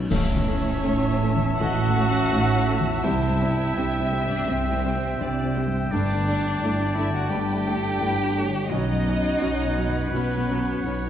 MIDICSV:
0, 0, Header, 1, 13, 480
1, 0, Start_track
1, 0, Tempo, 748130
1, 64, Time_signature, 4, 2, 24, 8
1, 1025, Tempo, 720288
1, 3425, Tempo, 703400
1, 7448, End_track
2, 0, Start_track
2, 0, Title_t, "Flute"
2, 0, Program_c, 0, 73
2, 64, Note_on_c, 0, 81, 81
2, 2470, Note_on_c, 0, 79, 78
2, 2480, Note_off_c, 0, 81, 0
2, 3914, Note_off_c, 0, 79, 0
2, 3917, Note_on_c, 0, 81, 77
2, 5611, Note_off_c, 0, 81, 0
2, 5816, Note_on_c, 0, 83, 76
2, 7448, Note_off_c, 0, 83, 0
2, 7448, End_track
3, 0, Start_track
3, 0, Title_t, "Oboe"
3, 0, Program_c, 1, 68
3, 66, Note_on_c, 1, 76, 75
3, 1964, Note_off_c, 1, 76, 0
3, 1987, Note_on_c, 1, 79, 67
3, 5607, Note_off_c, 1, 79, 0
3, 5820, Note_on_c, 1, 78, 63
3, 7448, Note_off_c, 1, 78, 0
3, 7448, End_track
4, 0, Start_track
4, 0, Title_t, "Violin section"
4, 0, Program_c, 2, 48
4, 70, Note_on_c, 2, 73, 90
4, 1003, Note_off_c, 2, 73, 0
4, 1026, Note_on_c, 2, 78, 102
4, 1983, Note_on_c, 2, 76, 79
4, 1990, Note_off_c, 2, 78, 0
4, 2808, Note_off_c, 2, 76, 0
4, 2828, Note_on_c, 2, 74, 71
4, 2948, Note_off_c, 2, 74, 0
4, 2951, Note_on_c, 2, 72, 76
4, 3672, Note_off_c, 2, 72, 0
4, 3912, Note_on_c, 2, 74, 85
4, 4606, Note_off_c, 2, 74, 0
4, 4637, Note_on_c, 2, 76, 69
4, 4754, Note_off_c, 2, 76, 0
4, 4757, Note_on_c, 2, 78, 77
4, 4871, Note_on_c, 2, 79, 92
4, 4872, Note_off_c, 2, 78, 0
4, 5815, Note_on_c, 2, 75, 91
4, 5821, Note_off_c, 2, 79, 0
4, 6785, Note_off_c, 2, 75, 0
4, 6785, Note_on_c, 2, 71, 67
4, 7448, Note_off_c, 2, 71, 0
4, 7448, End_track
5, 0, Start_track
5, 0, Title_t, "Clarinet"
5, 0, Program_c, 3, 71
5, 77, Note_on_c, 3, 76, 80
5, 3913, Note_on_c, 3, 74, 75
5, 3923, Note_off_c, 3, 76, 0
5, 5636, Note_off_c, 3, 74, 0
5, 5831, Note_on_c, 3, 73, 75
5, 7448, Note_off_c, 3, 73, 0
5, 7448, End_track
6, 0, Start_track
6, 0, Title_t, "Violin section"
6, 0, Program_c, 4, 48
6, 1032, Note_on_c, 4, 75, 80
6, 1255, Note_off_c, 4, 75, 0
6, 1281, Note_on_c, 4, 73, 74
6, 1994, Note_on_c, 4, 72, 72
6, 1996, Note_off_c, 4, 73, 0
6, 2227, Note_off_c, 4, 72, 0
6, 2228, Note_on_c, 4, 76, 86
6, 3425, Note_off_c, 4, 76, 0
6, 3425, Note_on_c, 4, 74, 73
6, 3670, Note_off_c, 4, 74, 0
6, 3670, Note_on_c, 4, 72, 67
6, 3912, Note_on_c, 4, 71, 71
6, 3913, Note_off_c, 4, 72, 0
6, 4149, Note_off_c, 4, 71, 0
6, 4161, Note_on_c, 4, 69, 59
6, 4396, Note_on_c, 4, 74, 79
6, 4399, Note_off_c, 4, 69, 0
6, 4861, Note_off_c, 4, 74, 0
6, 4876, Note_on_c, 4, 71, 72
6, 5109, Note_off_c, 4, 71, 0
6, 5113, Note_on_c, 4, 69, 61
6, 5347, Note_off_c, 4, 69, 0
6, 5351, Note_on_c, 4, 71, 70
6, 5580, Note_on_c, 4, 73, 70
6, 5586, Note_off_c, 4, 71, 0
6, 5820, Note_off_c, 4, 73, 0
6, 5821, Note_on_c, 4, 75, 75
6, 6297, Note_on_c, 4, 73, 80
6, 6303, Note_off_c, 4, 75, 0
6, 6542, Note_off_c, 4, 73, 0
6, 6546, Note_on_c, 4, 71, 86
6, 7269, Note_off_c, 4, 71, 0
6, 7269, Note_on_c, 4, 73, 76
6, 7448, Note_off_c, 4, 73, 0
6, 7448, End_track
7, 0, Start_track
7, 0, Title_t, "Cello"
7, 0, Program_c, 5, 42
7, 62, Note_on_c, 5, 61, 99
7, 1023, Note_on_c, 5, 66, 109
7, 1032, Note_off_c, 5, 61, 0
7, 1988, Note_on_c, 5, 64, 81
7, 1998, Note_off_c, 5, 66, 0
7, 2825, Note_off_c, 5, 64, 0
7, 2829, Note_on_c, 5, 62, 81
7, 2955, Note_on_c, 5, 60, 80
7, 2965, Note_off_c, 5, 62, 0
7, 3674, Note_off_c, 5, 60, 0
7, 3912, Note_on_c, 5, 62, 95
7, 4620, Note_on_c, 5, 64, 91
7, 4630, Note_off_c, 5, 62, 0
7, 4745, Note_off_c, 5, 64, 0
7, 4752, Note_on_c, 5, 66, 85
7, 4864, Note_on_c, 5, 67, 101
7, 4874, Note_off_c, 5, 66, 0
7, 5822, Note_on_c, 5, 63, 98
7, 5832, Note_off_c, 5, 67, 0
7, 6790, Note_on_c, 5, 59, 87
7, 6800, Note_off_c, 5, 63, 0
7, 7448, Note_off_c, 5, 59, 0
7, 7448, End_track
8, 0, Start_track
8, 0, Title_t, "Felt piano"
8, 0, Program_c, 6, 0
8, 0, Control_c, 6, 64, 127
8, 0, Note_on_c, 6, 42, 49
8, 0, Note_on_c, 6, 54, 45
8, 0, Note_on_c, 6, 61, 53
8, 0, Note_on_c, 6, 63, 56
8, 70, Note_on_c, 6, 33, 64
8, 76, Control_c, 6, 64, 0
8, 78, Note_off_c, 6, 42, 0
8, 78, Note_off_c, 6, 63, 0
8, 79, Note_off_c, 6, 54, 0
8, 81, Note_off_c, 6, 61, 0
8, 185, Control_c, 6, 64, 127
8, 231, Note_on_c, 6, 40, 51
8, 398, Note_on_c, 6, 61, 54
8, 480, Note_off_c, 6, 40, 0
8, 548, Note_on_c, 6, 63, 43
8, 644, Note_off_c, 6, 61, 0
8, 704, Note_on_c, 6, 61, 54
8, 705, Note_off_c, 6, 63, 0
8, 874, Note_on_c, 6, 40, 43
8, 964, Note_off_c, 6, 61, 0
8, 1003, Note_off_c, 6, 33, 0
8, 1036, Note_on_c, 6, 33, 55
8, 1129, Note_off_c, 6, 40, 0
8, 1212, Note_on_c, 6, 57, 50
8, 1367, Note_on_c, 6, 61, 52
8, 1456, Note_off_c, 6, 57, 0
8, 1522, Note_on_c, 6, 63, 50
8, 1615, Note_off_c, 6, 61, 0
8, 1672, Note_on_c, 6, 61, 51
8, 1676, Note_off_c, 6, 63, 0
8, 1830, Note_on_c, 6, 40, 53
8, 1927, Note_off_c, 6, 61, 0
8, 1968, Note_off_c, 6, 33, 0
8, 1986, Note_on_c, 6, 36, 67
8, 1990, Note_off_c, 6, 40, 0
8, 2002, Control_c, 6, 64, 0
8, 2115, Control_c, 6, 64, 127
8, 2155, Note_on_c, 6, 43, 51
8, 2315, Note_on_c, 6, 60, 45
8, 2407, Note_off_c, 6, 43, 0
8, 2474, Note_on_c, 6, 62, 40
8, 2567, Note_off_c, 6, 60, 0
8, 2625, Note_on_c, 6, 60, 53
8, 2631, Note_off_c, 6, 62, 0
8, 2785, Note_on_c, 6, 43, 44
8, 2882, Note_off_c, 6, 60, 0
8, 2919, Note_off_c, 6, 36, 0
8, 2942, Note_on_c, 6, 36, 52
8, 3042, Note_off_c, 6, 43, 0
8, 3106, Note_on_c, 6, 55, 55
8, 3265, Note_on_c, 6, 60, 48
8, 3361, Note_off_c, 6, 55, 0
8, 3427, Note_on_c, 6, 62, 50
8, 3523, Note_off_c, 6, 60, 0
8, 3587, Note_on_c, 6, 60, 55
8, 3589, Note_off_c, 6, 62, 0
8, 3744, Note_on_c, 6, 43, 51
8, 3847, Note_off_c, 6, 60, 0
8, 3883, Note_off_c, 6, 36, 0
8, 3909, Note_off_c, 6, 43, 0
8, 3919, Note_on_c, 6, 43, 64
8, 3925, Control_c, 6, 64, 0
8, 4020, Control_c, 6, 64, 127
8, 4071, Note_on_c, 6, 50, 51
8, 4235, Note_on_c, 6, 62, 52
8, 4330, Note_off_c, 6, 50, 0
8, 4395, Note_on_c, 6, 64, 47
8, 4491, Note_off_c, 6, 62, 0
8, 4555, Note_off_c, 6, 64, 0
8, 4561, Note_on_c, 6, 62, 46
8, 4711, Note_on_c, 6, 50, 44
8, 4810, Note_off_c, 6, 62, 0
8, 4846, Note_off_c, 6, 43, 0
8, 4860, Note_on_c, 6, 43, 55
8, 4964, Note_off_c, 6, 50, 0
8, 5023, Note_on_c, 6, 57, 52
8, 5174, Note_on_c, 6, 62, 53
8, 5278, Note_off_c, 6, 57, 0
8, 5328, Note_on_c, 6, 64, 46
8, 5433, Note_off_c, 6, 62, 0
8, 5489, Note_on_c, 6, 62, 54
8, 5495, Note_off_c, 6, 64, 0
8, 5649, Note_on_c, 6, 50, 55
8, 5750, Note_off_c, 6, 62, 0
8, 5789, Note_off_c, 6, 43, 0
8, 5813, Note_on_c, 6, 35, 68
8, 5814, Note_off_c, 6, 50, 0
8, 5835, Control_c, 6, 64, 0
8, 5942, Control_c, 6, 64, 127
8, 5970, Note_on_c, 6, 42, 48
8, 6135, Note_on_c, 6, 61, 53
8, 6233, Note_off_c, 6, 42, 0
8, 6299, Note_on_c, 6, 63, 42
8, 6396, Note_off_c, 6, 61, 0
8, 6457, Note_on_c, 6, 61, 51
8, 6463, Note_off_c, 6, 63, 0
8, 6614, Note_on_c, 6, 42, 46
8, 6720, Note_off_c, 6, 61, 0
8, 6757, Note_off_c, 6, 35, 0
8, 6791, Note_on_c, 6, 35, 51
8, 6879, Note_off_c, 6, 42, 0
8, 6955, Note_on_c, 6, 59, 51
8, 7125, Note_on_c, 6, 61, 53
8, 7208, Note_off_c, 6, 59, 0
8, 7274, Note_on_c, 6, 63, 49
8, 7371, Note_off_c, 6, 61, 0
8, 7430, Note_off_c, 6, 63, 0
8, 7448, Note_off_c, 6, 35, 0
8, 7448, End_track
9, 0, Start_track
9, 0, Title_t, "French horn section"
9, 0, Program_c, 7, 60
9, 60, Note_on_c, 7, 52, 63
9, 61, Note_on_c, 7, 61, 64
9, 1961, Note_off_c, 7, 52, 0
9, 1961, Note_off_c, 7, 61, 0
9, 1994, Note_on_c, 7, 55, 59
9, 2004, Note_on_c, 7, 60, 64
9, 3893, Note_off_c, 7, 60, 0
9, 3911, Note_on_c, 7, 57, 62
9, 3915, Note_off_c, 7, 55, 0
9, 3918, Note_on_c, 7, 62, 57
9, 5796, Note_off_c, 7, 62, 0
9, 5820, Note_off_c, 7, 57, 0
9, 5821, Note_on_c, 7, 54, 57
9, 5821, Note_on_c, 7, 61, 65
9, 7448, Note_off_c, 7, 54, 0
9, 7448, Note_off_c, 7, 61, 0
9, 7448, End_track
10, 0, Start_track
10, 0, Title_t, "Viola section"
10, 0, Program_c, 8, 48
10, 67, Note_on_c, 8, 61, 65
10, 68, Note_on_c, 8, 57, 65
10, 118, Note_off_c, 8, 61, 0
10, 119, Note_off_c, 8, 57, 0
10, 302, Note_on_c, 8, 57, 59
10, 303, Note_on_c, 8, 61, 55
10, 353, Note_off_c, 8, 57, 0
10, 354, Note_off_c, 8, 61, 0
10, 533, Note_on_c, 8, 57, 61
10, 536, Note_on_c, 8, 61, 67
10, 584, Note_off_c, 8, 57, 0
10, 587, Note_off_c, 8, 61, 0
10, 784, Note_on_c, 8, 57, 55
10, 785, Note_on_c, 8, 61, 52
10, 835, Note_off_c, 8, 57, 0
10, 836, Note_off_c, 8, 61, 0
10, 1024, Note_on_c, 8, 57, 66
10, 1029, Note_on_c, 8, 61, 67
10, 1077, Note_off_c, 8, 57, 0
10, 1082, Note_off_c, 8, 61, 0
10, 1263, Note_on_c, 8, 57, 59
10, 1263, Note_on_c, 8, 61, 53
10, 1316, Note_off_c, 8, 57, 0
10, 1316, Note_off_c, 8, 61, 0
10, 1497, Note_on_c, 8, 61, 64
10, 1498, Note_on_c, 8, 57, 60
10, 1551, Note_off_c, 8, 61, 0
10, 1552, Note_off_c, 8, 57, 0
10, 1746, Note_on_c, 8, 57, 54
10, 1747, Note_on_c, 8, 61, 56
10, 1800, Note_off_c, 8, 57, 0
10, 1801, Note_off_c, 8, 61, 0
10, 1987, Note_on_c, 8, 60, 64
10, 1991, Note_on_c, 8, 55, 65
10, 2040, Note_off_c, 8, 60, 0
10, 2044, Note_off_c, 8, 55, 0
10, 2229, Note_on_c, 8, 60, 53
10, 2230, Note_on_c, 8, 55, 53
10, 2282, Note_off_c, 8, 60, 0
10, 2283, Note_off_c, 8, 55, 0
10, 2470, Note_on_c, 8, 55, 66
10, 2471, Note_on_c, 8, 60, 64
10, 2523, Note_off_c, 8, 55, 0
10, 2524, Note_off_c, 8, 60, 0
10, 2703, Note_on_c, 8, 60, 48
10, 2704, Note_on_c, 8, 55, 56
10, 2757, Note_off_c, 8, 60, 0
10, 2758, Note_off_c, 8, 55, 0
10, 2937, Note_on_c, 8, 55, 65
10, 2940, Note_on_c, 8, 60, 63
10, 2991, Note_off_c, 8, 55, 0
10, 2993, Note_off_c, 8, 60, 0
10, 3190, Note_on_c, 8, 60, 58
10, 3191, Note_on_c, 8, 55, 61
10, 3243, Note_off_c, 8, 60, 0
10, 3245, Note_off_c, 8, 55, 0
10, 3427, Note_on_c, 8, 55, 58
10, 3432, Note_on_c, 8, 60, 59
10, 3481, Note_off_c, 8, 55, 0
10, 3486, Note_off_c, 8, 60, 0
10, 3670, Note_on_c, 8, 60, 55
10, 3671, Note_on_c, 8, 55, 54
10, 3724, Note_off_c, 8, 60, 0
10, 3726, Note_off_c, 8, 55, 0
10, 3921, Note_on_c, 8, 57, 60
10, 3921, Note_on_c, 8, 62, 63
10, 3975, Note_off_c, 8, 57, 0
10, 3976, Note_off_c, 8, 62, 0
10, 4159, Note_on_c, 8, 57, 57
10, 4161, Note_on_c, 8, 62, 53
10, 4214, Note_off_c, 8, 57, 0
10, 4216, Note_off_c, 8, 62, 0
10, 4403, Note_on_c, 8, 62, 64
10, 4406, Note_on_c, 8, 57, 61
10, 4458, Note_off_c, 8, 62, 0
10, 4461, Note_off_c, 8, 57, 0
10, 4637, Note_on_c, 8, 57, 51
10, 4639, Note_on_c, 8, 62, 50
10, 4692, Note_off_c, 8, 57, 0
10, 4694, Note_off_c, 8, 62, 0
10, 4875, Note_on_c, 8, 57, 62
10, 4880, Note_on_c, 8, 62, 63
10, 4929, Note_off_c, 8, 57, 0
10, 4935, Note_off_c, 8, 62, 0
10, 5107, Note_on_c, 8, 57, 61
10, 5107, Note_on_c, 8, 62, 61
10, 5162, Note_off_c, 8, 57, 0
10, 5162, Note_off_c, 8, 62, 0
10, 5342, Note_on_c, 8, 57, 58
10, 5342, Note_on_c, 8, 62, 54
10, 5396, Note_off_c, 8, 62, 0
10, 5397, Note_off_c, 8, 57, 0
10, 5584, Note_on_c, 8, 57, 61
10, 5589, Note_on_c, 8, 62, 50
10, 5639, Note_off_c, 8, 57, 0
10, 5643, Note_off_c, 8, 62, 0
10, 5824, Note_on_c, 8, 54, 68
10, 5825, Note_on_c, 8, 61, 59
10, 5878, Note_off_c, 8, 54, 0
10, 5879, Note_off_c, 8, 61, 0
10, 6063, Note_on_c, 8, 54, 52
10, 6063, Note_on_c, 8, 61, 60
10, 6117, Note_off_c, 8, 54, 0
10, 6117, Note_off_c, 8, 61, 0
10, 6296, Note_on_c, 8, 54, 63
10, 6298, Note_on_c, 8, 61, 62
10, 6350, Note_off_c, 8, 54, 0
10, 6352, Note_off_c, 8, 61, 0
10, 6544, Note_on_c, 8, 54, 53
10, 6549, Note_on_c, 8, 61, 46
10, 6599, Note_off_c, 8, 54, 0
10, 6604, Note_off_c, 8, 61, 0
10, 6793, Note_on_c, 8, 61, 68
10, 6796, Note_on_c, 8, 54, 60
10, 6848, Note_off_c, 8, 61, 0
10, 6850, Note_off_c, 8, 54, 0
10, 7039, Note_on_c, 8, 61, 55
10, 7041, Note_on_c, 8, 54, 61
10, 7094, Note_off_c, 8, 61, 0
10, 7096, Note_off_c, 8, 54, 0
10, 7282, Note_on_c, 8, 54, 52
10, 7285, Note_on_c, 8, 61, 60
10, 7337, Note_off_c, 8, 54, 0
10, 7339, Note_off_c, 8, 61, 0
10, 7448, End_track
11, 0, Start_track
11, 0, Title_t, "Cello section"
11, 0, Program_c, 10, 48
11, 67, Note_on_c, 10, 45, 83
11, 484, Note_off_c, 10, 45, 0
11, 538, Note_on_c, 10, 45, 70
11, 969, Note_off_c, 10, 45, 0
11, 1021, Note_on_c, 10, 45, 85
11, 1450, Note_off_c, 10, 45, 0
11, 1512, Note_on_c, 10, 45, 72
11, 1934, Note_off_c, 10, 45, 0
11, 1988, Note_on_c, 10, 48, 80
11, 2411, Note_off_c, 10, 48, 0
11, 2457, Note_on_c, 10, 48, 75
11, 2886, Note_off_c, 10, 48, 0
11, 2938, Note_on_c, 10, 48, 82
11, 3364, Note_off_c, 10, 48, 0
11, 3420, Note_on_c, 10, 48, 74
11, 3853, Note_off_c, 10, 48, 0
11, 3914, Note_on_c, 10, 43, 76
11, 4339, Note_off_c, 10, 43, 0
11, 4397, Note_on_c, 10, 43, 69
11, 4815, Note_off_c, 10, 43, 0
11, 4871, Note_on_c, 10, 43, 82
11, 5288, Note_off_c, 10, 43, 0
11, 5344, Note_on_c, 10, 43, 66
11, 5765, Note_off_c, 10, 43, 0
11, 5823, Note_on_c, 10, 47, 73
11, 6247, Note_off_c, 10, 47, 0
11, 6297, Note_on_c, 10, 47, 73
11, 6728, Note_off_c, 10, 47, 0
11, 6785, Note_on_c, 10, 47, 84
11, 7211, Note_off_c, 10, 47, 0
11, 7271, Note_on_c, 10, 47, 68
11, 7448, Note_off_c, 10, 47, 0
11, 7448, End_track
12, 0, Start_track
12, 0, Title_t, "Double bass section"
12, 0, Program_c, 11, 48
12, 57, Note_on_c, 11, 33, 81
12, 479, Note_off_c, 11, 33, 0
12, 541, Note_on_c, 11, 33, 71
12, 970, Note_off_c, 11, 33, 0
12, 1025, Note_on_c, 11, 33, 86
12, 1452, Note_off_c, 11, 33, 0
12, 1502, Note_on_c, 11, 33, 69
12, 1929, Note_off_c, 11, 33, 0
12, 1990, Note_on_c, 11, 36, 77
12, 2412, Note_off_c, 11, 36, 0
12, 2463, Note_on_c, 11, 36, 63
12, 2889, Note_off_c, 11, 36, 0
12, 2945, Note_on_c, 11, 36, 82
12, 3368, Note_off_c, 11, 36, 0
12, 3428, Note_on_c, 11, 36, 66
12, 3857, Note_off_c, 11, 36, 0
12, 3911, Note_on_c, 11, 31, 81
12, 4338, Note_off_c, 11, 31, 0
12, 4388, Note_on_c, 11, 31, 78
12, 4811, Note_off_c, 11, 31, 0
12, 4864, Note_on_c, 11, 31, 74
12, 5285, Note_off_c, 11, 31, 0
12, 5338, Note_on_c, 11, 31, 59
12, 5762, Note_off_c, 11, 31, 0
12, 5817, Note_on_c, 11, 35, 75
12, 6244, Note_off_c, 11, 35, 0
12, 6292, Note_on_c, 11, 35, 73
12, 6725, Note_off_c, 11, 35, 0
12, 6774, Note_on_c, 11, 35, 74
12, 7205, Note_off_c, 11, 35, 0
12, 7256, Note_on_c, 11, 35, 70
12, 7448, Note_off_c, 11, 35, 0
12, 7448, End_track
13, 0, Start_track
13, 0, Title_t, "Drums"
13, 66, Note_on_c, 9, 35, 78
13, 66, Note_on_c, 9, 49, 74
13, 130, Note_off_c, 9, 35, 0
13, 130, Note_off_c, 9, 49, 0
13, 7448, End_track
0, 0, End_of_file